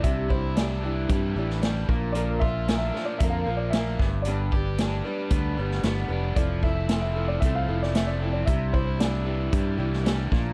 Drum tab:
HH |x---x---x---x---|x---x---x---x---|x---x---x---x---|x---x---x---x---|
SD |----o------oo---|----o-o-----o-o-|----o------oo---|----o------oo---|
BD |o-o-----o-----o-|--o-----o-----o-|--o-----o-------|o-o-----o-------|

HH |x---x---x---x---|
SD |----o------oo-o-|
BD |o-o-----o-----o-|